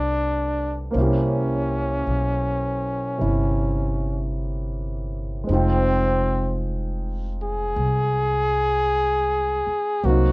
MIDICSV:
0, 0, Header, 1, 5, 480
1, 0, Start_track
1, 0, Tempo, 1134216
1, 398, Time_signature, 4, 2, 24, 8
1, 4369, End_track
2, 0, Start_track
2, 0, Title_t, "Grand piano"
2, 0, Program_c, 0, 0
2, 0, Control_c, 0, 64, 127
2, 0, Note_on_c, 0, 57, 44
2, 0, Note_on_c, 0, 59, 38
2, 0, Note_on_c, 0, 60, 38
2, 0, Note_on_c, 0, 62, 33
2, 0, Note_on_c, 0, 67, 32
2, 0, Note_on_c, 0, 69, 39
2, 0, Note_on_c, 0, 76, 39
2, 384, Note_on_c, 0, 58, 44
2, 392, Note_on_c, 0, 72, 43
2, 397, Note_off_c, 0, 57, 0
2, 397, Note_off_c, 0, 60, 0
2, 401, Note_off_c, 0, 59, 0
2, 401, Note_off_c, 0, 62, 0
2, 402, Note_off_c, 0, 67, 0
2, 403, Control_c, 0, 64, 0
2, 404, Note_off_c, 0, 69, 0
2, 404, Note_on_c, 0, 61, 40
2, 407, Note_off_c, 0, 76, 0
2, 415, Note_on_c, 0, 64, 42
2, 427, Note_on_c, 0, 67, 48
2, 467, Control_c, 0, 64, 127
2, 1347, Note_on_c, 0, 48, 36
2, 1352, Note_off_c, 0, 64, 0
2, 1359, Note_on_c, 0, 64, 40
2, 2301, Note_on_c, 0, 56, 41
2, 2314, Note_on_c, 0, 60, 38
2, 2315, Note_off_c, 0, 58, 0
2, 2318, Note_off_c, 0, 48, 0
2, 2319, Note_off_c, 0, 72, 0
2, 2324, Note_off_c, 0, 61, 0
2, 2324, Note_off_c, 0, 64, 0
2, 2326, Note_on_c, 0, 63, 36
2, 2327, Control_c, 0, 64, 0
2, 2335, Note_on_c, 0, 65, 39
2, 2336, Note_off_c, 0, 67, 0
2, 2346, Note_on_c, 0, 79, 46
2, 2395, Control_c, 0, 64, 127
2, 4234, Note_off_c, 0, 56, 0
2, 4241, Note_off_c, 0, 60, 0
2, 4246, Note_on_c, 0, 54, 49
2, 4247, Note_off_c, 0, 63, 0
2, 4251, Note_off_c, 0, 65, 0
2, 4251, Control_c, 0, 64, 0
2, 4251, Note_on_c, 0, 58, 44
2, 4257, Note_off_c, 0, 79, 0
2, 4259, Note_on_c, 0, 60, 43
2, 4264, Note_on_c, 0, 63, 42
2, 4270, Note_on_c, 0, 66, 52
2, 4327, Control_c, 0, 64, 127
2, 4369, Note_off_c, 0, 54, 0
2, 4369, Note_off_c, 0, 58, 0
2, 4369, Note_off_c, 0, 60, 0
2, 4369, Note_off_c, 0, 63, 0
2, 4369, Note_off_c, 0, 66, 0
2, 4369, End_track
3, 0, Start_track
3, 0, Title_t, "Trumpet"
3, 0, Program_c, 1, 56
3, 0, Note_on_c, 1, 62, 80
3, 339, Note_off_c, 1, 62, 0
3, 422, Note_on_c, 1, 61, 65
3, 1833, Note_off_c, 1, 61, 0
3, 2340, Note_on_c, 1, 60, 93
3, 2794, Note_off_c, 1, 60, 0
3, 3145, Note_on_c, 1, 68, 91
3, 4254, Note_on_c, 1, 66, 84
3, 4256, Note_off_c, 1, 68, 0
3, 4369, Note_off_c, 1, 66, 0
3, 4369, End_track
4, 0, Start_track
4, 0, Title_t, "Upright bass"
4, 0, Program_c, 2, 32
4, 0, Note_on_c, 2, 36, 65
4, 382, Note_off_c, 2, 36, 0
4, 398, Note_on_c, 2, 36, 70
4, 858, Note_off_c, 2, 36, 0
4, 875, Note_on_c, 2, 35, 58
4, 1338, Note_off_c, 2, 35, 0
4, 1359, Note_on_c, 2, 31, 61
4, 2307, Note_off_c, 2, 31, 0
4, 2322, Note_on_c, 2, 29, 67
4, 3267, Note_off_c, 2, 29, 0
4, 3285, Note_on_c, 2, 36, 65
4, 4074, Note_off_c, 2, 36, 0
4, 4247, Note_on_c, 2, 36, 71
4, 4369, Note_off_c, 2, 36, 0
4, 4369, End_track
5, 0, Start_track
5, 0, Title_t, "Muted upright bass strokes"
5, 4091, Note_on_c, 9, 29, 33
5, 4133, Note_off_c, 9, 29, 0
5, 4369, End_track
0, 0, End_of_file